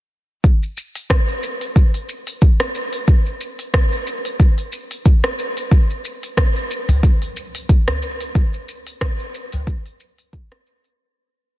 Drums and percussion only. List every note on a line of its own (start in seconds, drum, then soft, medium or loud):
0.44 kick loud
0.44 shaker soft
0.63 shaker soft
0.77 shaker medium
0.95 open hi-hat medium
0.95 shaker soft
1.10 kick loud
1.10 cross-stick medium
1.10 shaker soft
1.29 open hi-hat soft
1.29 shaker soft
1.43 shaker medium
1.61 open hi-hat medium
1.61 shaker soft
1.76 kick loud
1.76 shaker soft
1.94 open hi-hat soft
1.94 shaker soft
2.09 shaker medium
2.27 open hi-hat medium
2.27 shaker soft
2.42 kick loud
2.42 shaker soft
2.60 cross-stick medium
2.60 open hi-hat soft
2.60 shaker soft
2.75 shaker medium
2.93 open hi-hat medium
2.93 shaker soft
3.08 kick loud
3.08 shaker soft
3.26 shaker soft
3.41 shaker medium
3.59 open hi-hat medium
3.59 shaker soft
3.74 kick loud
3.74 cross-stick medium
3.74 shaker soft
3.92 open hi-hat soft
3.92 shaker soft
4.07 shaker medium
4.25 open hi-hat medium
4.25 shaker soft
4.40 kick loud
4.40 shaker soft
4.58 open hi-hat soft
4.58 shaker soft
4.73 shaker medium
4.91 open hi-hat medium
4.91 shaker soft
5.06 kick loud
5.06 shaker soft
5.24 cross-stick medium
5.24 open hi-hat soft
5.24 shaker soft
5.39 shaker medium
5.57 open hi-hat medium
5.57 shaker soft
5.71 kick loud
5.71 shaker soft
5.90 shaker soft
6.05 shaker medium
6.23 open hi-hat soft
6.23 shaker soft
6.37 kick loud
6.37 cross-stick medium
6.37 shaker soft
6.56 open hi-hat soft
6.56 shaker soft
6.71 shaker medium
6.89 open hi-hat medium
6.89 udu loud
6.89 shaker soft
7.03 kick loud
7.03 shaker soft
7.22 open hi-hat soft
7.22 shaker soft
7.37 shaker medium
7.55 open hi-hat medium
7.55 shaker soft
7.69 kick loud
7.69 shaker soft
7.88 cross-stick medium
7.88 open hi-hat soft
7.88 udu medium
7.88 shaker soft
8.02 shaker medium
8.21 open hi-hat medium
8.21 shaker soft
8.35 kick loud
8.35 shaker soft
8.54 shaker soft
8.68 shaker medium
8.87 open hi-hat medium
8.87 shaker soft
9.01 kick loud
9.01 cross-stick medium
9.01 shaker soft
9.20 open hi-hat soft
9.20 shaker soft
9.34 shaker medium
9.52 open hi-hat medium
9.52 udu medium
9.52 shaker soft
9.67 kick loud
9.67 shaker soft
9.86 open hi-hat soft
9.86 shaker soft
10.00 shaker medium
10.18 open hi-hat soft
10.18 shaker soft
10.33 kick loud
10.33 shaker soft
10.52 cross-stick medium
10.52 open hi-hat soft
10.52 shaker soft
10.67 shaker medium
10.84 open hi-hat medium
10.84 shaker soft